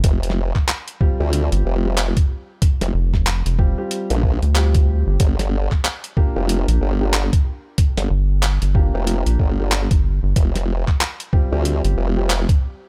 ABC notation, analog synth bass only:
X:1
M:4/4
L:1/16
Q:"Swing 16ths" 1/4=93
K:Fmix
V:1 name="Analog synth bass" clef=bass
z8 z G,,, z6 | z2 F,,,3 F,,,2 z4 D,,4 G,,, | z8 z B,,, z6 | z2 G,,,3 G,,,2 z2 B,,, z3 G,,,2 G,,, |
z8 z G,,, z6 |]